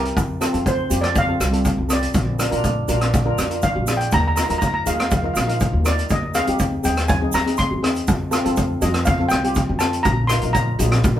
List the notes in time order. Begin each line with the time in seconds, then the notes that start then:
Already playing: C4 E4 G4
0.05 closed hi-hat
0.17 F2, kick, closed hi-hat, shaker
0.41 C4 F4 A4, cross-stick, closed hi-hat, shaker
0.53 F2 C4 F4 A4, closed hi-hat, shaker
0.66 C5, kick, closed hi-hat, shaker
0.89 F2 C4 F4 G4, closed hi-hat, shaker
1.01 D5, cross-stick, closed hi-hat, shaker
1.15 F5, kick, closed hi-hat, shaker
1.28 C4 F4 A4
1.40 C2, cross-stick, closed hi-hat, shaker
1.52 C4 F4 A4, closed hi-hat
1.65 kick, closed hi-hat, shaker
1.78 C2
1.89 C4 F4 A4, cross-stick, closed hi-hat, shaker
1.93 D5
2.02 closed hi-hat, shaker
2.14 A#1, kick, closed hi-hat, shaker
2.39 D4 F4 A#4, cross-stick, closed hi-hat, shaker
2.51 A#1 D4 F4 A#4, closed hi-hat, shaker
2.64 kick, closed hi-hat, shaker
2.88 A#1 D4 F4 A#4, closed hi-hat, shaker
3.01 cross-stick, closed hi-hat, shaker
3.14 kick, closed hi-hat, shaker
3.25 D4 F4 A#4
3.38 F2, cross-stick, closed hi-hat, shaker
3.50 D4 F4 A#4, closed hi-hat, shaker
3.62 F5, kick, closed hi-hat, shaker
3.76 A#1
3.87 D4 F4 G#4, cross-stick, closed hi-hat, shaker
3.97 G5, closed hi-hat, shaker
4.11 D#2 A#5, kick, closed hi-hat, shaker
4.20 A#5
4.27 A#5
4.36 D#4 F4 A#4 A#5, cross-stick, closed hi-hat, shaker
4.43 A#5
4.49 D#2 D#4 F4 A#4 A#5, closed hi-hat, shaker
4.58 A#5, kick, closed hi-hat, shaker
4.66 A#5
4.74 A#5
4.86 D#2 D#4 F4 G#4 F5, closed hi-hat, shaker
4.95 F5
5.00 F5, cross-stick, closed hi-hat, shaker
5.10 F5, kick, closed hi-hat, shaker
5.17 F5
5.24 D#4 F4 A#4 F5
5.34 A#1 F5, cross-stick, closed hi-hat, shaker
5.41 F5
5.48 D#4 F4 A#4 F5, closed hi-hat
5.60 kick, closed hi-hat, shaker
5.73 D#2
5.85 D#4 F4 A#4 D5, cross-stick, closed hi-hat, shaker
5.98 closed hi-hat, shaker
6.09 D#2 D#5, kick, closed hi-hat, shaker
6.34 C4 D#4 G#4 F5, cross-stick, closed hi-hat, shaker
6.47 D#2 C4 D#4 G4, closed hi-hat, shaker
6.59 kick, closed hi-hat, shaker
6.83 D#2 C4 D#4 G#4 G5, closed hi-hat, shaker
6.96 cross-stick, closed hi-hat, shaker
7.08 G#5, kick, closed hi-hat, shaker
7.21 C4 D#4 G#4
7.32 D#2 A#5, cross-stick, closed hi-hat, shaker
7.46 C4 D#4 G#4, closed hi-hat
7.57 C6, kick, closed hi-hat, shaker
7.71 E2
7.83 C4 D#4 G#4, cross-stick, closed hi-hat
7.95 closed hi-hat, shaker
8.07 F2, kick, closed hi-hat, shaker
8.31 C4 F4 A4, cross-stick, closed hi-hat, shaker
8.45 F2 C4 F4 A4, closed hi-hat, shaker
8.56 kick, closed hi-hat, shaker
8.81 F2 C4 F4 A4 D#5, closed hi-hat, shaker
8.94 cross-stick, closed hi-hat, shaker
9.05 F5, kick, closed hi-hat, shaker
9.19 C4 F4 A4
9.29 C2 G5, cross-stick, closed hi-hat, shaker
9.44 C4 F4 G4, closed hi-hat
9.55 kick, closed hi-hat, shaker
9.69 F2
9.79 C4 F4 A4 A5, cross-stick, closed hi-hat, shaker
9.93 closed hi-hat, shaker
10.03 A#1 A#5, kick, closed hi-hat, shaker
10.27 D#4 F4 A#4 C6, cross-stick, closed hi-hat, shaker
10.41 A#1 D#4 F4 A#4, closed hi-hat
10.53 A#5, kick, closed hi-hat, shaker
10.79 A#1 D#4 F4 G#4, closed hi-hat, shaker
10.92 cross-stick, closed hi-hat, shaker
11.03 A#1, kick, closed hi-hat, shaker
11.16 D4 A#4